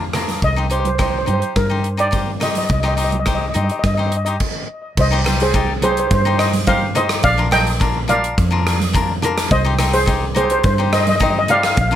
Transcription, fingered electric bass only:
0, 0, Header, 1, 2, 480
1, 0, Start_track
1, 0, Tempo, 567644
1, 362, Time_signature, 4, 2, 24, 8
1, 10109, End_track
2, 0, Start_track
2, 0, Title_t, "Fingered electric bass"
2, 0, Program_c, 0, 33
2, 0, Note_on_c, 0, 41, 69
2, 328, Note_off_c, 0, 41, 0
2, 356, Note_on_c, 0, 36, 84
2, 1048, Note_off_c, 0, 36, 0
2, 1083, Note_on_c, 0, 43, 78
2, 1197, Note_off_c, 0, 43, 0
2, 1319, Note_on_c, 0, 43, 66
2, 2251, Note_off_c, 0, 43, 0
2, 2280, Note_on_c, 0, 36, 85
2, 2971, Note_off_c, 0, 36, 0
2, 3005, Note_on_c, 0, 43, 80
2, 3119, Note_off_c, 0, 43, 0
2, 3246, Note_on_c, 0, 43, 77
2, 3694, Note_off_c, 0, 43, 0
2, 4204, Note_on_c, 0, 36, 101
2, 5133, Note_off_c, 0, 36, 0
2, 5167, Note_on_c, 0, 43, 86
2, 6093, Note_off_c, 0, 43, 0
2, 6122, Note_on_c, 0, 34, 99
2, 7049, Note_off_c, 0, 34, 0
2, 7085, Note_on_c, 0, 41, 87
2, 8009, Note_off_c, 0, 41, 0
2, 8042, Note_on_c, 0, 36, 94
2, 8967, Note_off_c, 0, 36, 0
2, 9000, Note_on_c, 0, 43, 90
2, 9925, Note_off_c, 0, 43, 0
2, 9956, Note_on_c, 0, 34, 94
2, 10109, Note_off_c, 0, 34, 0
2, 10109, End_track
0, 0, End_of_file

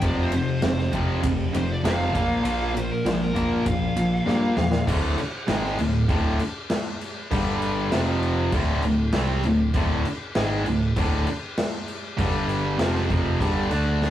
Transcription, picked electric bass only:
0, 0, Header, 1, 3, 480
1, 0, Start_track
1, 0, Key_signature, -1, "minor"
1, 0, Tempo, 608519
1, 23, Time_signature, 4, 2, 24, 8
1, 11123, End_track
2, 0, Start_track
2, 0, Title_t, "Picked electric bass"
2, 0, Program_c, 0, 34
2, 21, Note_on_c, 0, 29, 87
2, 369, Note_off_c, 0, 29, 0
2, 493, Note_on_c, 0, 29, 90
2, 670, Note_off_c, 0, 29, 0
2, 736, Note_on_c, 0, 29, 87
2, 911, Note_off_c, 0, 29, 0
2, 978, Note_on_c, 0, 29, 95
2, 1152, Note_off_c, 0, 29, 0
2, 1213, Note_on_c, 0, 29, 92
2, 1389, Note_off_c, 0, 29, 0
2, 1452, Note_on_c, 0, 29, 96
2, 1697, Note_off_c, 0, 29, 0
2, 1697, Note_on_c, 0, 34, 80
2, 1870, Note_off_c, 0, 34, 0
2, 1930, Note_on_c, 0, 34, 96
2, 2280, Note_off_c, 0, 34, 0
2, 2409, Note_on_c, 0, 34, 89
2, 2758, Note_off_c, 0, 34, 0
2, 2884, Note_on_c, 0, 34, 98
2, 3061, Note_off_c, 0, 34, 0
2, 3123, Note_on_c, 0, 34, 90
2, 3300, Note_off_c, 0, 34, 0
2, 3363, Note_on_c, 0, 43, 98
2, 3539, Note_off_c, 0, 43, 0
2, 3602, Note_on_c, 0, 40, 78
2, 3779, Note_off_c, 0, 40, 0
2, 3849, Note_on_c, 0, 26, 97
2, 4072, Note_off_c, 0, 26, 0
2, 4323, Note_on_c, 0, 32, 86
2, 4548, Note_off_c, 0, 32, 0
2, 4563, Note_on_c, 0, 26, 78
2, 4788, Note_off_c, 0, 26, 0
2, 4801, Note_on_c, 0, 26, 100
2, 5026, Note_off_c, 0, 26, 0
2, 5771, Note_on_c, 0, 31, 99
2, 6217, Note_off_c, 0, 31, 0
2, 6243, Note_on_c, 0, 29, 90
2, 6694, Note_off_c, 0, 29, 0
2, 6723, Note_on_c, 0, 26, 101
2, 6948, Note_off_c, 0, 26, 0
2, 6960, Note_on_c, 0, 26, 77
2, 7187, Note_off_c, 0, 26, 0
2, 7211, Note_on_c, 0, 36, 96
2, 7433, Note_off_c, 0, 36, 0
2, 7449, Note_on_c, 0, 26, 80
2, 7672, Note_off_c, 0, 26, 0
2, 7683, Note_on_c, 0, 26, 94
2, 7909, Note_off_c, 0, 26, 0
2, 8174, Note_on_c, 0, 32, 96
2, 8395, Note_off_c, 0, 32, 0
2, 8414, Note_on_c, 0, 26, 77
2, 8636, Note_off_c, 0, 26, 0
2, 8649, Note_on_c, 0, 26, 100
2, 8873, Note_off_c, 0, 26, 0
2, 9612, Note_on_c, 0, 31, 96
2, 10063, Note_off_c, 0, 31, 0
2, 10090, Note_on_c, 0, 29, 86
2, 10316, Note_off_c, 0, 29, 0
2, 10337, Note_on_c, 0, 29, 81
2, 10560, Note_off_c, 0, 29, 0
2, 10570, Note_on_c, 0, 31, 106
2, 10797, Note_off_c, 0, 31, 0
2, 10809, Note_on_c, 0, 38, 86
2, 11123, Note_off_c, 0, 38, 0
2, 11123, End_track
3, 0, Start_track
3, 0, Title_t, "Muted picked electric bass strokes"
3, 7938, Note_on_c, 9, 29, 42
3, 8017, Note_off_c, 9, 29, 0
3, 11123, End_track
0, 0, End_of_file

